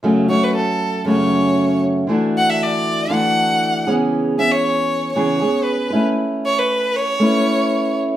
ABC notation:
X:1
M:4/4
L:1/16
Q:1/4=117
K:F#m
V:1 name="Violin"
z2 c B A4 c6 z2 | z2 f e d4 f6 z2 | z2 e c4- c c4 B3 z | z2 c B3 c8 z2 |]
V:2 name="Steel-string acoustic guitar"
[F,,C,F,A,CF]2 [F,A,CF]6 [F,,C,F,A,CF]8 | [D,E,A,DF]8 [D,E,A,DF]6 [C,E,B,CG]2- | [C,E,B,CG]2 [B,CG]6 [C,E,B,CG]2 [B,CG]4 [A,CEB]2- | [A,CEB]8 [A,CEB]8 |]